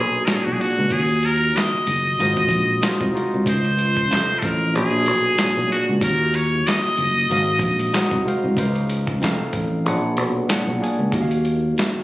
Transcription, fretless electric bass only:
0.00 0.25 B1 medium
0.28 muted fretless electric bass stroke soft
0.47 0.59 B1 medium
0.79 0.90 C#2 medium
0.91 1.51 D#2 medium
1.74 muted fretless electric bass stroke soft
1.87 2.16 F#1 medium
2.20 2.49 G#1 medium
2.49 2.79 A#1 medium
3.01 3.13 C2 medium
3.34 3.46 C2 medium
3.47 4.06 C#2 medium
4.11 4.27 F1 medium
4.30 muted fretless electric bass stroke soft
4.43 4.75 A1 medium
4.75 5.07 A#1 medium
5.07 5.36 B1 medium
5.40 muted fretless electric bass stroke soft
5.57 5.69 B1 medium
5.89 6.01 C#2 medium
6.02 6.62 D#2 medium
6.85 muted fretless electric bass stroke soft
6.98 7.27 F#1 medium
7.30 7.60 G#1 medium
7.60 7.90 A#1 medium
8.12 8.24 C2 medium
8.44 8.56 C2 medium
8.57 9.17 C#2 medium
9.22 9.38 F1 medium
9.40 muted fretless electric bass stroke soft
9.54 9.86 A1 medium
9.86 10.17 A#1 medium
10.17 10.46 B1 medium
10.49 muted fretless electric bass stroke soft
10.67 10.79 B1 medium
10.99 11.11 C#2 medium
11.13 11.72 D#2 medium
11.95 muted fretless electric bass stroke soft

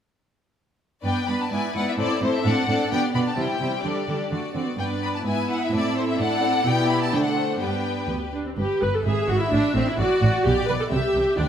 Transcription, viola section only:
1.03 1.27 B3 soft
1.03 1.27 D4 soft
1.28 1.50 B3 soft
1.28 1.51 D4 soft
1.51 1.73 B3 soft
1.51 1.73 E4 soft
1.74 1.98 B3 soft
1.74 1.96 E4 soft
1.98 2.20 C4 soft
1.98 2.20 E4 soft
2.21 2.43 C4 soft
2.21 2.44 E4 soft
2.44 2.67 C4 soft
2.44 2.67 D4 soft
2.68 2.91 C4 soft
2.68 2.89 D4 soft
2.90 3.13 B3 soft
2.90 3.12 D4 soft
3.14 3.37 B3 soft
3.14 3.37 D4 soft
3.37 3.59 G3 soft
3.37 3.59 E4 soft
3.60 3.83 G3 soft
3.60 3.84 E4 soft
3.84 4.07 G3 soft
3.84 4.07 D4 soft
4.08 4.31 G3 soft
4.08 4.31 D4 soft
4.31 4.39 A3 soft
4.54 4.67 C4 soft
4.67 4.77 B3 soft
4.78 5.22 B3 soft
4.78 5.22 D4 soft
5.25 5.72 B3 soft
5.25 6.63 E4 soft
5.72 6.19 C4 soft
6.19 6.42 D4 medium
6.42 6.66 C4 soft
6.65 7.12 B3 medium
6.65 7.12 E4 medium
7.13 7.61 A3 soft
7.13 7.59 D4 soft
7.60 8.04 B3 soft
7.60 8.04 D4 soft
8.09 8.17 B3 soft
8.34 8.46 D4 soft
8.46 8.51 C4 soft
8.58 8.80 G4 medium
8.81 8.93 B4 medium
8.93 9.05 A4 medium
9.05 9.28 G#4 medium
9.29 9.40 F#4 medium
9.40 9.52 E4 medium
9.51 9.74 D4 medium
9.75 9.86 C4 medium
9.87 9.98 E4 medium
9.99 10.44 F#4 medium
10.45 10.68 G4 medium
10.67 10.72 B4 medium
10.79 10.84 A4 medium
10.91 11.36 G4 medium
11.37 11.48 D4 medium

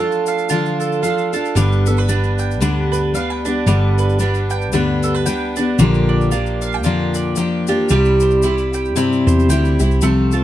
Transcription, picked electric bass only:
1.56 2.61 G1 medium
2.61 3.64 D2 medium
3.67 4.73 G1 loud
4.73 5.75 D2 medium
5.79 6.85 A#1 loud
6.85 7.87 F2 medium
7.90 8.96 C2 loud
8.96 9.25 G2 medium
9.27 9.47 E2 medium
9.49 9.77 D2 medium
9.80 10.00 C2 medium
10.02 10.44 C2 loud

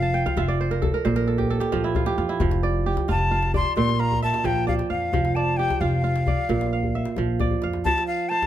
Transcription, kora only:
0.00 1.10 F3 medium
0.00 0.35 D5 medium
0.00 0.26 F5 medium
0.00 0.77 A5 medium
0.14 1.07 G5 medium
0.26 1.26 F5 medium
0.37 1.72 F4 medium
0.37 1.41 E5 medium
0.48 1.59 D5 medium
0.61 1.04 C5 medium
0.71 0.93 A#4 medium
0.82 1.11 A4 medium
0.94 1.16 A#4 medium
1.05 2.46 A#2 medium
1.05 2.24 C5 medium
1.16 1.56 A#4 medium
1.27 1.50 A4 medium
1.38 1.60 G4 medium
1.50 2.82 A4 medium
1.60 2.06 G4 medium
1.72 2.40 F3 medium
1.72 1.95 F4 medium
1.84 2.24 E4 medium
1.96 2.17 F4 medium
2.06 2.86 G4 medium
2.18 3.08 F4 medium
2.29 3.15 E4 medium
2.41 3.82 F3 medium
2.63 3.54 D5 medium
2.86 4.27 G4 medium
3.09 3.31 F4 medium
3.31 4.28 F4 medium
3.54 4.65 D5 medium
3.77 5.18 A#2 medium
4.00 4.89 F5 medium
4.22 4.96 E5 medium
4.44 5.12 F3 medium
4.67 5.36 D5 medium
4.90 5.90 F5 medium
5.14 6.54 F3 medium
5.36 6.27 D5 medium
5.59 7.00 G4 medium
5.81 6.03 F4 medium
6.04 7.01 F4 medium
6.28 7.38 D5 medium
6.49 7.90 A#2 medium
6.73 7.63 F5 medium
6.95 7.70 E5 medium
7.18 7.85 F3 medium
7.40 8.47 D5 medium
7.64 8.47 F5 medium
7.86 8.47 F3 medium
8.31 8.47 C5 medium

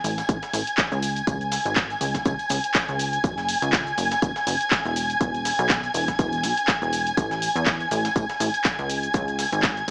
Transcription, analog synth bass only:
0.04 0.22 A1 medium
0.29 0.38 A1 medium
0.54 0.63 A1 medium
0.92 1.22 C#2 medium
1.27 1.58 C#2 loud
1.66 1.95 G#1 medium
2.01 2.18 C#2 medium
2.26 2.35 C#2 medium
2.50 2.59 C#2 medium
2.89 3.18 C#2 medium
3.24 3.55 F#1 loud
3.62 3.92 C#2 medium
3.98 4.15 F#1 medium
4.22 4.32 F#1 medium
4.47 4.56 F#1 medium
4.85 5.15 E1 medium
5.21 5.52 E1 loud
5.59 5.89 B1 medium
5.94 6.12 E1 medium
6.19 6.45 E1 medium
6.44 6.53 B1 loud
6.82 7.12 E1 loud
7.17 7.49 A1 loud
7.56 7.85 E2 medium
7.91 8.09 A1 medium
8.16 8.25 A1 medium
8.40 8.50 A1 medium
8.79 9.09 C#2 medium
9.14 9.45 C#2 loud
9.52 9.82 G#1 medium

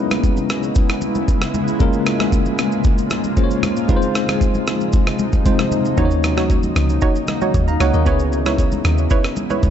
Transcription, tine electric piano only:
0.00 1.76 G#3 medium
0.00 1.76 B3 medium
0.00 1.76 C#4 medium
0.00 1.80 E4 medium
0.00 1.77 B4 medium
1.79 3.33 G#3 medium
1.79 3.34 A#3 medium
1.79 3.34 C#4 medium
1.79 3.34 F4 medium
1.79 3.34 A#4 medium
3.36 3.87 G#3 medium
3.36 3.89 A#3 medium
3.36 3.89 C#4 medium
3.36 3.88 F4 medium
3.36 3.44 C5 soft
3.44 3.92 C#5 medium
3.88 5.42 G#3 medium
3.88 5.42 C4 medium
3.88 5.43 D#4 medium
3.88 5.43 F4 medium
3.88 3.96 B4 medium
3.96 5.45 C5 medium
5.45 5.98 G#3 medium
5.45 5.98 C4 medium
5.45 5.97 D#4 medium
5.45 5.98 F4 medium
5.45 5.98 C5 medium
5.97 8.02 A#3 medium
5.97 8.02 C#4 medium
5.97 8.03 D#4 medium
5.97 8.03 F#4 medium
5.97 6.05 C5 medium
6.05 7.55 C#5 medium
7.68 7.80 F5 medium
7.68 7.80 A#5 medium
7.80 7.94 C#5 medium
7.80 7.93 F#5 medium
7.94 8.19 A#4 medium
7.94 8.19 D#5 medium
8.05 9.70 B3 medium
8.05 9.70 C#4 medium
8.05 9.70 E4 medium
8.05 9.70 G#4 medium
8.05 9.70 C#5 medium

